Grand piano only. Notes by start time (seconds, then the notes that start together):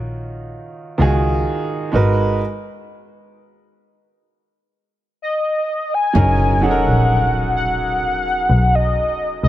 Already playing: D#3 D#4 F4 F#4 C#5
0.98 D#3 D#4 F4 F#4 G#4
1.92 G#3 D#4 F#4 A#4 B4
6.13 F#3 C#4 D#4 G#4 A#4
6.61 F#3 C#4 D#4 G#4 A4
6.71 A#4